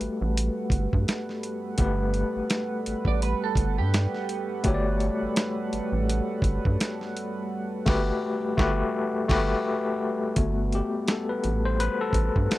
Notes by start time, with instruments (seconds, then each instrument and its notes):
Already playing: analog synth pad G3 A4 B4 F#5, tine electric piano A3 F#4 G4 B4
0.01 analog synth bass A1, closed hi-hat
0.22 analog synth bass A1
0.37 closed hi-hat
0.70 analog synth bass G1, kick, closed hi-hat
0.93 analog synth bass G2, kick
1.08 snare, closed hi-hat
1.29 snare
1.43 closed hi-hat
1.78 analog synth bass G1, tine electric piano A3 G4 B4 F#5, kick, closed hi-hat
2.14 closed hi-hat
2.36 analog synth bass A1
2.50 snare, closed hi-hat
2.86 analog synth bass A1, closed hi-hat
3.05 analog synth bass A1, clean electric guitar D5, kick
3.22 clean electric guitar B4, closed hi-hat
3.44 clean electric guitar A4
3.55 analog synth bass G1, kick, closed hi-hat
3.78 analog synth bass G2, clean electric guitar G4
3.94 snare, closed hi-hat
4.15 snare
4.29 closed hi-hat
4.63 analog synth bass G1, tine electric piano A3 F#4 G4, kick, closed hi-hat
4.68 tine electric piano C#5
4.74 tine electric piano D5
5.00 closed hi-hat
5.22 analog synth bass A1
5.36 snare, closed hi-hat
5.73 analog synth bass A1, closed hi-hat
5.92 analog synth bass A1
6.09 closed hi-hat
6.42 analog synth bass G1, kick, closed hi-hat
6.65 analog synth bass G2, kick
6.80 snare, closed hi-hat
7.01 snare
7.17 closed hi-hat
7.86 analog synth bass G1, tine electric piano A3 F#4 G4 B4, kick, snare, crash
8.57 analog synth bass G1, tine electric piano A3 F#4 G4 B4, kick, snare
9.28 analog synth bass G1, tine electric piano A3 F#4 G4 B4, kick, snare, crash
10.35 analog synth bass G1, analog synth pad G3 A4 B4 F#5, tine electric piano A3 B3 F#4, kick, closed hi-hat
10.72 tine electric piano G4, closed hi-hat
11.08 tine electric piano A4, snare, closed hi-hat
11.29 tine electric piano B4
11.44 analog synth bass A1, closed hi-hat
11.65 tine electric piano C5
11.80 tine electric piano B4, closed hi-hat
12.01 tine electric piano A4
12.13 analog synth bass A1, kick, closed hi-hat
12.36 analog synth bass G2, kick
12.51 snare, closed hi-hat